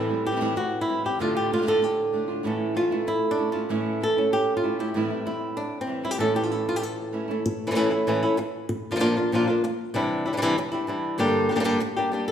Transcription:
Already playing: nylon-string guitar A2 E3 G3 C4 E4
0.09 nylon-string guitar G3 C4 E4
0.25 nylon-string guitar G3 C4 E4 G4
0.32 nylon-string guitar E3 G3 C4 E4
0.36 nylon-string guitar E3 G3 C4 E4
0.41 nylon-string guitar A2 E3 G3 C4 E4
0.56 nylon-string guitar F#4, muted nylon-string guitar stroke
0.81 nylon-string guitar E4
0.88 nylon-string guitar E3 G3 C4 E4
1.04 nylon-string guitar G3 C4 E4 G4
1.19 nylon-string guitar A2 D3 A3 D4 F4
1.35 nylon-string guitar A3 D4 F4 G4
1.51 nylon-string guitar D3 A3 D4 F4
1.57 nylon-string guitar D3 A3 D4 F4
1.62 nylon-string guitar D3 A3 D4 F4
1.67 nylon-string guitar A2 D3 A3 D4 F4 A4
1.82 nylon-string guitar G4, muted nylon-string guitar stroke
2.13 nylon-string guitar D3 A3 D4 F4
2.28 nylon-string guitar A3 D4 F4
2.43 nylon-string guitar A2 E3 A3 C#4 E4 A4
2.75 nylon-string guitar E3 A3 C#4 E4 F4
2.91 nylon-string guitar A3 C#4 E4
3.07 nylon-string guitar E4, muted nylon-string guitar stroke
3.31 nylon-string guitar D4
3.38 nylon-string guitar A3 C#4 E4
3.52 nylon-string guitar A3 C#4 E4 F4
3.69 nylon-string guitar A2 E3 A3 C#4 E4
4.00 nylon-string guitar E3 A3 C#4 E4 A4
4.17 nylon-string guitar A3 C#4 E4
4.32 nylon-string guitar G4, muted nylon-string guitar stroke
4.57 nylon-string guitar F4
4.64 nylon-string guitar A3 C#4 E4
4.79 nylon-string guitar A3 C#4 E4 G4
4.94 nylon-string guitar A2 E3 G3 C4 E4
5.10 nylon-string guitar G3 C4 E4
5.25 nylon-string guitar G3 C4 E4
5.57 nylon-string guitar D4, muted nylon-string guitar stroke
5.81 nylon-string guitar C4
5.87 nylon-string guitar E3 G3 C4 E4
6.03 nylon-string guitar G3 C4 E4
6.11 nylon-string guitar G4
6.18 nylon-string guitar A2 E3 A3 C#4 E4 A4
6.34 nylon-string guitar A3 C#4 E4 G4
6.43 nylon-string guitar F4
6.49 nylon-string guitar A3 C#4 E4
6.69 nylon-string guitar F4
6.76 nylon-string guitar G4
6.81 nylon-string guitar A4, muted nylon-string guitar stroke
7.12 nylon-string guitar E3 A3 C#4 E4
7.28 nylon-string guitar A3 C#4 E4
7.46 muted nylon-string guitar stroke
7.67 nylon-string guitar E3 A3 C#4 E4
7.72 nylon-string guitar A2 A3 C#4 E4
7.76 nylon-string guitar E3 A3 C#4 E4
7.91 nylon-string guitar A3 C#4 E4
8.07 nylon-string guitar A2 E3 A3 C#4 E4
8.23 nylon-string guitar A3 C#4 E4
8.37 muted nylon-string guitar stroke
8.69 muted nylon-string guitar stroke
8.91 nylon-string guitar F3 A#3 D4 F4
8.96 nylon-string guitar A#2 F3 A#3 D4 F4
9.00 nylon-string guitar F3 A#3 D4 F4
9.17 nylon-string guitar A#3 D4 F4
9.32 nylon-string guitar A#2 F3 A#3 D4 F4
9.48 nylon-string guitar A#3 D4 F4
9.64 muted nylon-string guitar stroke
9.94 nylon-string guitar C3 E3 G3 D4 E4
10.26 nylon-string guitar G3 D4 E4
10.33 nylon-string guitar E3 G3 D4 E4
10.37 nylon-string guitar E3 G3 D4 E4
10.42 nylon-string guitar C3 E3 G3 D4 E4
10.58 muted nylon-string guitar stroke
10.72 nylon-string guitar G3 D4 E4
10.87 nylon-string guitar E3 G3 D4 E4
11.18 nylon-string guitar G2 D3 G3 A#3 D4 G4
11.49 nylon-string guitar D3 G3 A#3 D4 G4
11.55 nylon-string guitar D3 G3 A#3 D4 G4
11.60 nylon-string guitar D3 G3 A#3 D4 G4
11.64 nylon-string guitar G2 D3 G3 A#3 D4 G4
11.80 muted nylon-string guitar stroke
11.96 nylon-string guitar G3 A#3 D4 G4
12.12 nylon-string guitar G3 A#3 D4 G4
12.28 nylon-string guitar A4

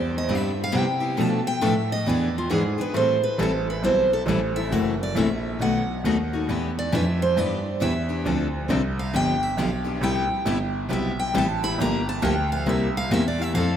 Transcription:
Already playing: grand piano E2, steel-string acoustic guitar D5
0.18 steel-string acoustic guitar D#5
0.29 grand piano G2, steel-string acoustic guitar C3 G3 B3 E4 G4
0.35 steel-string acoustic guitar E5
0.64 steel-string acoustic guitar F5
0.72 steel-string acoustic guitar C3 G3 B3 E4 G4, grand piano C3
0.78 steel-string acoustic guitar G5
1.00 steel-string acoustic guitar B3 E4 G4
1.06 steel-string acoustic guitar G#5
1.17 steel-string acoustic guitar B2 F3 A3 D4 A4 B4 A5, grand piano B2
1.47 steel-string acoustic guitar G5
1.61 grand piano A2, steel-string acoustic guitar B2 F3 A3 D4 A4 B4 E5
1.92 steel-string acoustic guitar D#5
2.06 grand piano E2, steel-string acoustic guitar E3 B3 D4 G#4 B4 D5
2.38 steel-string acoustic guitar F4
2.50 grand piano G#2, steel-string acoustic guitar E3 B3 D4 G#4 B4
2.78 grand piano G#2, steel-string acoustic guitar B3 D4 G#4 B4
2.94 grand piano A2, steel-string acoustic guitar E3 G3 C4 E4 A4 C5
3.23 grand piano A2, steel-string acoustic guitar B4
3.38 grand piano A1, steel-string acoustic guitar E3 G3 C4 E4 A4
3.43 steel-string acoustic guitar A4
3.70 steel-string acoustic guitar B4
3.83 grand piano B1, steel-string acoustic guitar E3 G3 C4 E4 A4 C5
4.13 steel-string acoustic guitar A4
4.26 grand piano A1, steel-string acoustic guitar E3 G3 C4 E4 A4
4.56 steel-string acoustic guitar C4 E4 A4 E5
4.70 grand piano F#1, steel-string acoustic guitar C3 E3 F#3 A3 C4 E4 F#4 A4 F#5
5.03 steel-string acoustic guitar D5
5.15 grand piano A#1, steel-string acoustic guitar C3 E3 F#3 A3 C4 E4 F#4 A4 E5
5.60 grand piano B1, steel-string acoustic guitar B2 D#3 F#3 A3 B3 D#4 F#4 A4 F#5
6.04 grand piano D#2, steel-string acoustic guitar B2 D#3 F#3 A3 B3 D#4 F#4 A4
6.33 steel-string acoustic guitar A3 D#4 F#4
6.49 grand piano E2, steel-string acoustic guitar E3 G3 B3 D4 E4 G4 B4
6.79 steel-string acoustic guitar D5
6.92 grand piano F2, steel-string acoustic guitar E3 G3 B3 D4 E4 G4 B4 E5
7.22 steel-string acoustic guitar C5
7.37 grand piano G2, steel-string acoustic guitar E3 G3 B3 D4 E4 G4 B4 D5
7.80 grand piano E2, steel-string acoustic guitar E3 G3 B3 D4 E4 G4 B4 E5
8.09 steel-string acoustic guitar B3 D4 G4
8.25 grand piano D2, steel-string acoustic guitar D3 F3 C4 D4 A4
8.69 grand piano C2, steel-string acoustic guitar D3 F3 C4 D4 A4
8.99 steel-string acoustic guitar F5
9.13 grand piano G1, steel-string acoustic guitar D3 F3 B3 D4 G4 G5
9.43 steel-string acoustic guitar E5
9.57 grand piano B1, steel-string acoustic guitar D3 F3 B3 D4 G4 F5
9.84 steel-string acoustic guitar B3 D4 G4
10.01 grand piano C2, steel-string acoustic guitar C3 G3 B3 E4 G4 G5
10.30 grand piano C2
10.46 grand piano G1, steel-string acoustic guitar C3 G3 B3 E4 G4
10.89 grand piano B1, steel-string acoustic guitar C3 G3 B3 E4 G4 E5
11.20 steel-string acoustic guitar G5
11.34 grand piano A1, steel-string acoustic guitar C3 G3 B3 E4 G4
11.38 steel-string acoustic guitar A5
11.63 steel-string acoustic guitar B3 E4 G4 B5
11.78 grand piano G1, steel-string acoustic guitar D3 F3 A#3 D4 G4 A#5
12.09 steel-string acoustic guitar A5
12.22 grand piano D2, steel-string acoustic guitar D3 F3 A#3 D4 G4 G5
12.52 steel-string acoustic guitar F5
12.66 grand piano C2, steel-string acoustic guitar C3 G3 A#3 E4 G4 E5
12.97 steel-string acoustic guitar F5
13.11 grand piano E2, steel-string acoustic guitar C3 G3 A#3 E4 G4 E5
13.28 steel-string acoustic guitar D5
13.38 steel-string acoustic guitar A#3 E4 G4 E5
13.54 grand piano F2, steel-string acoustic guitar F3 C4 E4 A4 F5

